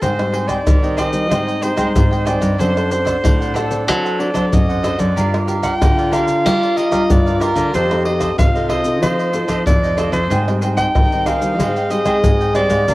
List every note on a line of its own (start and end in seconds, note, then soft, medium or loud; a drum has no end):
0.01 0.63 G#2 soft
0.01 0.57 G#2 medium
0.01 0.12 G3 soft
0.01 0.12 C4 medium
0.01 2.61 D#4 loud
0.01 0.12 D#4 medium
0.01 0.31 G#4 medium
0.01 0.32 C5 medium
0.01 0.49 C5 medium
0.01 0.32 D#5 medium
0.01 0.33 G5 medium
0.01 pandeiro medium
0.01 maracas medium
0.01 surdo medium
0.18 0.62 G3 medium
0.18 0.62 C4 medium
0.18 0.62 D#4 medium
0.18 pandeiro soft
0.18 tamborim medium
0.18 maracas soft
0.33 0.46 G#4 medium
0.33 0.47 C5 soft
0.33 0.47 D#5 soft
0.33 0.48 G5 medium
0.33 pandeiro medium
0.48 0.58 G#4 medium
0.48 0.58 C5 medium
0.48 0.98 D5 medium
0.48 0.58 D#5 medium
0.48 0.59 G5 medium
0.48 pandeiro medium
0.48 tamborim medium
0.48 maracas medium
0.48 surdo soft
0.66 1.28 D#3 medium
0.66 1.31 D#3 medium
0.66 0.76 G3 medium
0.66 0.76 C4 medium
0.66 0.77 D#4 medium
0.66 pandeiro medium
0.66 tamborim medium
0.66 maracas medium
0.66 surdo loud
0.83 1.10 G3 medium
0.83 1.10 C4 medium
0.83 1.10 D#4 medium
0.83 0.96 C5 soft
0.83 0.97 D#5 soft
0.83 0.97 G5 soft
0.83 pandeiro soft
0.83 maracas soft
0.97 1.29 G#4 medium
0.97 1.29 C5 medium
0.97 1.29 D#5 medium
0.97 1.64 D#5 medium
0.97 1.29 G5 medium
0.97 pandeiro medium
0.97 tamborim medium
0.97 maracas medium
0.97 surdo soft
1.12 1.25 G3 medium
1.12 1.25 C4 medium
1.12 1.25 D#4 medium
1.12 pandeiro medium
1.12 maracas medium
1.30 1.92 G#2 medium
1.30 1.58 G3 medium
1.30 1.72 G#3 medium
1.30 1.58 C4 medium
1.30 1.58 D#4 medium
1.30 1.45 G#4 medium
1.30 1.46 C5 medium
1.30 1.46 D#5 medium
1.30 1.45 G5 medium
1.30 pandeiro medium
1.30 tamborim medium
1.30 maracas medium
1.30 surdo medium
1.47 1.60 C5 soft
1.47 1.61 D#5 soft
1.47 1.61 G5 soft
1.47 pandeiro soft
1.47 maracas soft
1.61 1.72 G3 medium
1.61 1.72 C4 medium
1.61 1.72 D#4 medium
1.61 1.75 G#4 soft
1.61 1.75 C5 soft
1.61 2.28 C5 medium
1.61 1.76 D#5 soft
1.61 1.76 G5 soft
1.61 pandeiro medium
1.61 maracas medium
1.76 2.21 G3 medium
1.76 1.92 G#3 medium
1.76 2.21 C4 medium
1.76 2.21 D#4 medium
1.76 1.87 G#4 medium
1.76 1.87 C5 medium
1.76 1.87 D#5 medium
1.76 1.87 G5 medium
1.76 pandeiro medium
1.76 tamborim medium
1.76 maracas medium
1.76 surdo soft
1.95 2.36 G#2 medium
1.95 2.56 D#3 medium
1.95 pandeiro medium
1.95 maracas medium
1.95 surdo loud
2.11 2.25 C5 soft
2.11 2.25 D#5 medium
2.11 2.26 G5 medium
2.11 pandeiro soft
2.11 maracas soft
2.25 2.56 G3 soft
2.25 2.56 C4 medium
2.25 2.57 D#4 medium
2.25 2.41 G#4 medium
2.25 2.41 C5 medium
2.25 2.61 D5 medium
2.25 2.40 D#5 medium
2.25 2.39 G5 medium
2.25 pandeiro medium
2.25 tamborim medium
2.25 maracas medium
2.25 surdo soft
2.40 2.56 G2 loud
2.40 2.58 C5 soft
2.40 2.57 D#5 soft
2.40 2.57 G5 medium
2.40 pandeiro medium
2.40 maracas medium
2.40 surdo soft
2.58 3.14 F#2 medium
2.58 3.21 F#3 medium
2.58 2.70 C4 medium
2.58 2.88 D4 medium
2.58 4.90 D4 medium
2.58 2.71 D4 medium
2.58 2.89 A4 medium
2.58 2.71 A4 medium
2.58 2.90 C5 medium
2.58 2.91 C5 medium
2.58 2.90 F#5 medium
2.58 pandeiro medium
2.58 maracas medium
2.58 surdo soft
2.76 3.19 C4 medium
2.76 3.19 D4 medium
2.76 3.19 A4 medium
2.76 pandeiro soft
2.76 tamborim medium
2.76 maracas soft
2.90 3.03 D4 soft
2.90 3.04 A4 soft
2.90 3.04 C5 medium
2.90 3.57 C5 medium
2.90 3.04 F#5 medium
2.90 pandeiro medium
2.90 maracas medium
3.05 3.15 D4 medium
3.05 3.15 A4 medium
3.05 3.15 C5 medium
3.05 3.16 F#5 medium
3.05 pandeiro medium
3.05 tamborim medium
3.05 maracas medium
3.05 surdo soft
3.23 3.88 A2 loud
3.23 3.85 F#3 medium
3.23 3.67 C4 medium
3.23 3.67 D4 soft
3.23 3.67 A4 medium
3.23 pandeiro medium
3.23 tamborim medium
3.23 maracas medium
3.23 surdo loud
3.40 3.53 A4 soft
3.40 3.54 C5 soft
3.40 3.54 F#5 soft
3.40 pandeiro soft
3.40 maracas soft
3.54 3.86 D4 medium
3.54 3.86 A4 medium
3.54 3.88 A4 medium
3.54 3.86 C5 medium
3.54 3.87 F#5 medium
3.54 pandeiro medium
3.54 tamborim medium
3.54 maracas medium
3.54 surdo soft
3.70 3.82 C4 medium
3.70 3.82 D4 medium
3.70 3.82 A4 medium
3.70 pandeiro medium
3.70 maracas medium
3.87 4.49 F#3 medium
3.87 4.29 F#3 medium
3.87 4.15 C4 medium
3.87 4.03 D4 medium
3.87 4.15 D4 medium
3.87 4.03 A4 medium
3.87 4.15 A4 medium
3.87 4.21 A4 medium
3.87 4.03 C5 medium
3.87 4.03 F#5 medium
3.87 pandeiro medium
3.87 tamborim medium
3.87 maracas medium
3.87 surdo medium
4.04 4.18 A4 soft
4.04 4.18 C5 medium
4.04 4.19 F#5 medium
4.04 pandeiro soft
4.04 maracas soft
4.18 4.29 C4 medium
4.18 4.32 D4 soft
4.18 4.29 D4 medium
4.18 4.33 A4 soft
4.18 4.30 A4 medium
4.18 4.33 C5 medium
4.18 4.55 D5 medium
4.18 4.33 F#5 soft
4.18 pandeiro medium
4.34 4.49 F#3 medium
4.34 4.78 C4 medium
4.34 4.44 D4 medium
4.34 4.78 D4 medium
4.34 4.44 A4 medium
4.34 4.79 A4 medium
4.34 4.44 C5 medium
4.34 4.44 F#5 medium
4.34 pandeiro medium
4.34 tamborim medium
4.34 maracas medium
4.34 surdo soft
4.52 4.93 F#2 medium
4.52 5.14 F#3 medium
4.52 5.01 D#5 medium
4.52 pandeiro medium
4.52 maracas medium
4.52 surdo loud
4.69 4.82 A4 soft
4.69 4.83 C5 soft
4.69 4.83 F#5 medium
4.69 pandeiro soft
4.69 maracas soft
4.83 5.05 C4 medium
4.83 4.99 D4 medium
4.83 5.05 D4 medium
4.83 4.98 A4 medium
4.83 5.05 A4 medium
4.83 4.97 C5 medium
4.83 4.96 F#5 medium
4.83 pandeiro medium
4.83 tamborim medium
4.83 maracas medium
4.83 surdo soft
4.98 5.13 F#2 loud
4.98 5.15 A4 soft
4.98 5.15 C5 soft
4.98 5.37 D5 medium
4.98 5.14 F#5 soft
4.98 pandeiro medium
4.98 maracas medium
4.98 surdo soft
5.16 5.72 G2 medium
5.16 5.78 G3 medium
5.16 5.27 D4 medium
5.16 7.75 F4 loud
5.16 5.27 F4 soft
5.16 5.46 G4 medium
5.16 5.47 A#4 medium
5.16 5.27 A#4 medium
5.16 5.47 D5 medium
5.16 5.48 F5 medium
5.16 pandeiro medium
5.16 maracas medium
5.16 surdo medium
5.33 5.76 D4 medium
5.33 5.76 F4 medium
5.33 5.77 A#4 medium
5.33 pandeiro soft
5.33 tamborim medium
5.33 maracas soft
5.47 5.61 G4 medium
5.47 5.62 A#4 medium
5.47 5.62 D5 medium
5.47 5.62 F5 medium
5.47 pandeiro medium
5.47 maracas medium
5.62 5.73 G4 medium
5.62 5.73 A#4 medium
5.62 5.73 D5 medium
5.62 5.73 F5 medium
5.62 6.14 G5 medium
5.62 pandeiro medium
5.62 tamborim medium
5.62 maracas medium
5.62 surdo soft
5.81 6.42 D3 medium
5.81 6.45 D3 loud
5.81 6.08 D4 medium
5.81 6.08 F4 medium
5.81 6.09 A#4 medium
5.81 pandeiro medium
5.81 tamborim medium
5.81 maracas medium
5.81 surdo loud
5.97 6.11 A#4 soft
5.97 6.12 D5 soft
5.97 6.12 F5 soft
5.97 pandeiro soft
5.97 maracas soft
6.11 6.32 D4 medium
6.11 6.32 F4 soft
6.11 6.43 G4 medium
6.11 6.44 A#4 medium
6.11 6.32 A#4 medium
6.11 6.44 D5 medium
6.11 6.78 F5 loud
6.11 6.44 F5 medium
6.11 pandeiro medium
6.11 tamborim medium
6.11 maracas medium
6.11 surdo soft
6.28 pandeiro medium
6.28 maracas medium
6.45 7.06 G3 medium
6.45 6.86 G3 loud
6.45 6.88 D4 medium
6.45 6.88 F4 medium
6.45 6.60 G4 medium
6.45 6.60 A#4 medium
6.45 6.89 A#4 medium
6.45 6.61 D5 medium
6.45 6.61 F5 medium
6.45 pandeiro medium
6.45 tamborim medium
6.45 maracas medium
6.45 surdo medium
6.62 6.75 A#4 soft
6.62 6.76 D5 soft
6.62 6.76 F5 soft
6.62 pandeiro soft
6.62 maracas soft
6.76 6.90 G4 soft
6.76 6.90 A#4 soft
6.76 6.90 D5 soft
6.76 7.12 D#5 medium
6.76 6.91 F5 soft
6.76 pandeiro medium
6.76 maracas medium
6.91 7.06 G3 medium
6.91 7.20 D4 medium
6.91 7.20 F4 medium
6.91 7.01 G4 medium
6.91 7.01 A#4 medium
6.91 7.20 A#4 medium
6.91 7.02 D5 medium
6.91 7.02 F5 medium
6.91 pandeiro medium
6.91 tamborim medium
6.91 maracas medium
6.91 surdo soft
7.10 7.51 G2 medium
7.10 7.71 D3 medium
7.10 7.43 D5 medium
7.10 pandeiro medium
7.10 maracas medium
7.10 surdo loud
7.26 7.37 D4 medium
7.26 7.37 F4 medium
7.26 7.38 A#4 medium
7.26 7.39 A#4 soft
7.26 7.40 D5 soft
7.26 7.41 F5 medium
7.26 pandeiro soft
7.26 maracas soft
7.40 7.62 D4 medium
7.40 7.62 F4 medium
7.40 7.56 G4 medium
7.40 7.56 A#4 medium
7.40 7.74 A#4 medium
7.40 7.63 A#4 medium
7.40 7.55 D5 medium
7.40 7.54 F5 medium
7.40 pandeiro medium
7.40 tamborim medium
7.40 maracas medium
7.40 surdo soft
7.55 7.70 D3 loud
7.55 7.72 A#4 soft
7.55 7.72 D5 soft
7.55 7.71 F5 soft
7.55 pandeiro medium
7.55 maracas medium
7.55 surdo soft
7.74 8.28 F2 medium
7.74 8.35 F3 medium
7.74 7.85 C4 medium
7.74 7.85 D#4 medium
7.74 8.04 F4 medium
7.74 8.39 G4 loud
7.74 8.04 A4 medium
7.74 7.85 A4 medium
7.74 8.04 C5 loud
7.74 8.05 C5 medium
7.74 8.05 D#5 medium
7.74 pandeiro medium
7.74 maracas medium
7.74 surdo medium
7.91 8.33 C4 medium
7.91 8.34 D#4 medium
7.91 8.34 A4 medium
7.91 pandeiro soft
7.91 tamborim medium
7.91 maracas soft
8.05 8.19 F4 soft
8.05 8.19 A4 medium
8.05 8.19 C5 medium
8.05 8.36 D#5 medium
8.05 8.19 D#5 medium
8.05 pandeiro medium
8.20 8.30 F4 medium
8.20 8.30 A4 medium
8.20 8.30 C5 medium
8.20 8.30 D#5 medium
8.20 pandeiro medium
8.20 tamborim medium
8.20 maracas medium
8.20 surdo soft
8.38 8.99 C3 medium
8.38 9.02 C3 medium
8.38 8.49 C4 soft
8.38 8.49 D#4 medium
8.38 9.99 F4 medium
8.38 8.49 A4 medium
8.38 8.71 F5 loud
8.38 pandeiro medium
8.38 tamborim medium
8.38 maracas medium
8.38 surdo loud
8.55 8.82 C4 medium
8.55 8.82 D#4 medium
8.55 8.82 A4 medium
8.55 8.68 A4 soft
8.55 8.69 C5 soft
8.55 8.69 D#5 soft
8.55 pandeiro soft
8.55 maracas soft
8.69 9.00 F4 medium
8.69 9.01 A4 medium
8.69 9.01 C5 medium
8.69 9.02 D#5 medium
8.69 9.01 D#5 medium
8.69 pandeiro medium
8.69 tamborim medium
8.69 surdo soft
8.84 8.96 C4 medium
8.84 8.97 D#4 medium
8.84 8.97 A4 medium
8.84 pandeiro medium
8.84 maracas medium
9.02 9.43 F3 medium
9.02 9.64 F3 medium
9.02 9.30 C4 medium
9.02 9.30 D#4 medium
9.02 9.17 F4 medium
9.02 9.17 A4 medium
9.02 9.30 A4 medium
9.02 9.63 C5 medium
9.02 9.18 C5 medium
9.02 9.18 D#5 medium
9.02 pandeiro medium
9.02 tamborim medium
9.02 maracas medium
9.02 surdo medium
9.19 9.32 A4 soft
9.19 9.33 C5 soft
9.19 9.33 D#5 soft
9.19 pandeiro soft
9.19 maracas soft
9.33 9.44 C4 medium
9.33 9.44 D#4 medium
9.33 9.47 F4 soft
9.33 9.47 A4 medium
9.33 9.44 A4 medium
9.33 9.48 C5 soft
9.33 9.48 D#5 soft
9.33 pandeiro medium
9.33 maracas medium
9.48 9.63 F3 medium
9.48 9.93 C4 medium
9.48 9.93 D#4 medium
9.48 9.58 F4 medium
9.48 9.59 A4 medium
9.48 9.93 A4 medium
9.48 9.59 C5 medium
9.48 9.59 D#5 medium
9.48 pandeiro medium
9.48 tamborim medium
9.48 maracas medium
9.48 surdo soft
9.66 10.07 F2 medium
9.66 10.28 C3 medium
9.66 10.12 D5 medium
9.66 pandeiro medium
9.66 maracas medium
9.66 surdo loud
9.83 9.96 A4 soft
9.83 9.97 C5 soft
9.83 9.97 D#5 medium
9.83 pandeiro soft
9.83 maracas soft
9.97 10.19 C4 medium
9.97 10.19 D#4 medium
9.97 10.13 F4 medium
9.97 10.13 A4 medium
9.97 10.19 A4 medium
9.97 10.12 C5 medium
9.97 10.11 D#5 medium
9.97 pandeiro medium
9.97 tamborim medium
9.97 maracas medium
10.12 10.27 F2 medium
10.12 10.29 A4 soft
10.12 10.49 C5 medium
10.12 10.29 C5 soft
10.12 10.28 D#5 soft
10.12 pandeiro medium
10.12 maracas medium
10.12 surdo soft
10.30 10.85 G#2 medium
10.30 10.92 G#2 medium
10.30 10.40 G3 soft
10.30 10.41 C4 medium
10.30 11.60 D#4 loud
10.30 10.41 D#4 medium
10.30 10.60 G#4 medium
10.30 10.61 C5 medium
10.30 10.61 D#5 medium
10.30 10.62 G5 medium
10.30 pandeiro medium
10.30 maracas medium
10.30 surdo medium
10.47 10.90 G3 medium
10.47 10.91 C4 medium
10.47 10.91 D#4 medium
10.47 pandeiro soft
10.47 tamborim medium
10.47 maracas soft
10.61 10.75 G#4 soft
10.61 10.76 C5 medium
10.61 10.76 D#5 medium
10.61 10.76 G5 medium
10.61 pandeiro medium
10.61 maracas medium
10.77 10.87 G#4 medium
10.77 10.87 C5 medium
10.77 10.87 D#5 medium
10.77 11.28 G5 loud
10.77 10.87 G5 medium
10.77 pandeiro medium
10.77 tamborim medium
10.77 maracas medium
10.77 surdo soft
10.95 11.56 D#3 medium
10.95 11.59 D#3 medium
10.95 11.05 G3 medium
10.95 11.05 C4 soft
10.95 11.05 D#4 medium
10.95 pandeiro medium
10.95 tamborim medium
10.95 maracas medium
10.95 surdo loud
11.12 11.39 G3 medium
11.12 11.39 C4 medium
11.12 11.39 D#4 medium
11.12 11.25 C5 soft
11.12 11.26 D#5 soft
11.12 11.27 G5 medium
11.12 pandeiro soft
11.12 maracas soft
11.26 11.58 G#4 medium
11.26 11.58 C5 medium
11.26 11.58 D#5 medium
11.26 11.92 F5 medium
11.26 11.58 G5 medium
11.26 pandeiro medium
11.26 tamborim medium
11.26 maracas medium
11.26 surdo soft
11.40 11.53 G3 medium
11.40 11.53 C4 medium
11.40 11.53 D#4 medium
11.40 pandeiro medium
11.40 maracas medium
11.59 12.20 G#2 medium
11.59 11.78 G3 medium
11.59 12.00 G#3 medium
11.59 11.78 C4 medium
11.59 11.78 D#4 medium
11.59 12.90 G#4 loud
11.59 11.74 G#4 medium
11.59 11.74 C5 medium
11.59 11.75 D#5 medium
11.59 11.75 G5 medium
11.59 pandeiro medium
11.59 tamborim medium
11.59 maracas medium
11.59 surdo medium
11.76 11.90 C5 soft
11.76 11.90 D#5 soft
11.76 11.90 G5 soft
11.76 pandeiro soft
11.76 maracas soft
11.89 12.00 G3 medium
11.89 12.00 C4 medium
11.89 12.01 D#4 medium
11.89 12.04 G#4 soft
11.89 12.05 C5 soft
11.89 12.55 D#5 loud
11.89 12.05 D#5 soft
11.89 12.05 G5 medium
11.89 pandeiro medium
11.89 maracas medium
12.05 12.20 G#3 medium
12.05 12.49 C4 medium
12.05 12.50 D#4 medium
12.05 12.16 G#4 medium
12.05 12.16 C5 medium
12.05 12.16 D#5 medium
12.05 12.16 G5 medium
12.05 pandeiro medium
12.05 tamborim medium
12.05 maracas medium
12.05 surdo soft
12.24 12.65 G#2 medium
12.24 12.85 D#3 medium
12.24 pandeiro medium
12.24 maracas medium
12.24 surdo loud
12.40 12.54 C5 soft
12.40 12.54 D#5 soft
12.40 12.55 G5 medium
12.40 pandeiro soft
12.40 maracas soft
12.54 12.76 G3 medium
12.54 12.76 C4 medium
12.54 12.76 D#4 medium
12.54 12.70 G#4 medium
12.54 12.70 C5 medium
12.54 12.94 D5 loud
12.54 12.69 D#5 medium
12.54 12.68 G5 medium
12.54 pandeiro medium
12.54 tamborim medium
12.54 maracas medium
12.54 surdo soft
12.69 12.84 G#2 loud
12.69 12.86 C5 soft
12.69 12.86 D#5 soft
12.69 12.85 G5 soft
12.69 pandeiro medium
12.69 maracas medium
12.69 surdo soft
12.88 12.94 A#2 medium
12.88 12.94 F3 soft
12.88 12.94 G#3 soft
12.88 12.94 D4 medium
12.88 12.94 G4 loud
12.88 12.94 A#4 medium
12.88 12.94 F5 medium
12.88 pandeiro medium
12.88 maracas medium
12.88 surdo medium